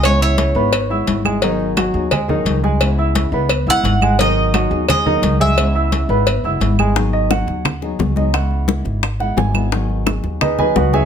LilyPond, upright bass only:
\new Staff \with { instrumentName = "Upright bass" } { \clef bass \time 4/4 \key gis \minor \tempo 4 = 174 cis,4. gis,,4. gis,,4~ | gis,,4. dis,4. cis,4~ | cis,4. cis,4 ais,,8 gis,,4~ | gis,,4. dis,4. cis,4~ |
cis,4. gis,,4 fis,,8 gis,,4~ | gis,,4. dis,4. cis,4~ | cis,4. gis,,4. gis,,4~ | gis,,4. dis,4. cis,4 | }